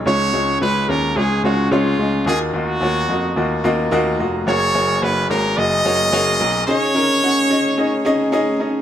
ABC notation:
X:1
M:4/4
L:1/8
Q:"Swing 16ths" 1/4=109
K:C#mix
V:1 name="Trumpet"
c2 B A G F E2 | G F4 z3 | c2 B A d4 | c6 z2 |]
V:2 name="Upright piano"
[G,CEc] [G,CEc] [G,CEc] [G,CEc] [G,CEc] [G,CEc] [G,CEc] [G,CEd] | [A,EFd] [A,EFd] [A,EFc] [A,EFd] [A,EFd] [A,EFd] [A,EFd] [A,EFd] | [A,FGc] [A,FGc] [A,FGc] [A,FGc] [A,FGd] [A,FGc] [A,FGc] [A,FGA] | [CDGd] [CDGA] [CDGf] [CDGd] [CDGd] [CDGd] [CDGd] [CDGd] |]
V:3 name="Upright piano" clef=bass
C,3 z4 z | D,3 z4 z | z8 | C,3 z4 z |]
V:4 name="Grand piano" clef=bass
C,, C,, C,, D,, C,, C,, C,, C,, | D,, D,, D,, E,, D,, D,, D,, E,,, | F,,, F,,, F,,, G,,, F,,, F,,, F,,, B,,, | z8 |]